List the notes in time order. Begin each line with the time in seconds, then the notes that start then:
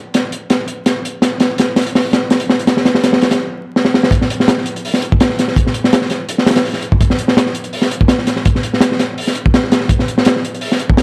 0.14 snare, closed hi-hat
0.32 closed hi-hat
0.50 snare, closed hi-hat
0.68 closed hi-hat
0.86 snare, closed hi-hat
1.05 closed hi-hat
1.22 snare, closed hi-hat
1.40 snare, closed hi-hat
1.58 snare, closed hi-hat
1.76 snare, closed hi-hat
1.81 closed hi-hat
1.86 closed hi-hat
1.95 snare, open hi-hat
2.13 snare, closed hi-hat
2.30 snare, closed hi-hat
2.40 closed hi-hat
2.50 snare
2.59 closed hi-hat
2.67 snare, closed hi-hat
2.77 snare
2.85 snare, closed hi-hat
2.95 snare
3.04 snare, closed hi-hat
3.13 snare
3.22 snare, closed hi-hat
3.31 snare, closed hi-hat
3.76 snare
3.85 snare
3.94 snare
4.03 snare
4.11 kick, closed hi-hat
4.21 snare
4.30 closed hi-hat
4.40 snare
4.48 snare, closed hi-hat
4.58 snare
4.66 closed hi-hat
4.76 closed hi-hat
4.85 open hi-hat
4.94 snare
5.02 closed hi-hat
5.12 kick
5.20 snare, closed hi-hat
5.29 snare
5.39 snare, closed hi-hat
5.48 snare
5.56 kick, closed hi-hat
5.67 snare
5.74 closed hi-hat
5.84 snare
5.93 snare, closed hi-hat
6.01 snare
6.10 snare, closed hi-hat
6.29 closed hi-hat
6.38 snare
6.46 snare, closed hi-hat
6.51 snare, closed hi-hat
6.56 snare, closed hi-hat
6.65 open hi-hat
6.73 snare
6.82 closed hi-hat
6.92 kick
7.01 kick, closed hi-hat
7.10 snare
7.19 closed hi-hat
7.28 snare
7.37 snare, closed hi-hat
7.46 snare
7.55 closed hi-hat
7.64 closed hi-hat
7.73 open hi-hat
7.82 snare
7.91 closed hi-hat
8.01 kick
8.08 snare, closed hi-hat
8.18 snare
8.27 snare, closed hi-hat
8.36 snare
8.45 kick, closed hi-hat
8.55 snare
8.63 closed hi-hat
8.73 snare
8.81 snare, closed hi-hat
8.92 snare
8.99 snare, closed hi-hat
9.18 open hi-hat
9.27 snare
9.35 closed hi-hat
9.46 kick
9.54 snare, closed hi-hat
9.63 snare
9.72 snare, closed hi-hat
9.81 snare
9.89 kick, closed hi-hat
9.99 snare
10.08 closed hi-hat
10.18 snare
10.25 snare, closed hi-hat
10.36 snare
10.45 closed hi-hat
10.54 closed hi-hat
10.61 open hi-hat
10.72 snare
10.79 closed hi-hat
10.89 kick
10.97 snare, closed hi-hat